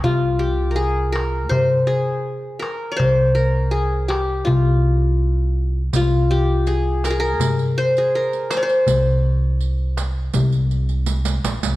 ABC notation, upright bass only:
X:1
M:4/4
L:1/16
Q:1/4=82
K:none
V:1 name="Upright bass" clef=bass
C,,8 G,,2 z6 | C,,8 C,,8 | C,,8 G,,2 z6 | C,,8 C,,6 _B,,, C,, |]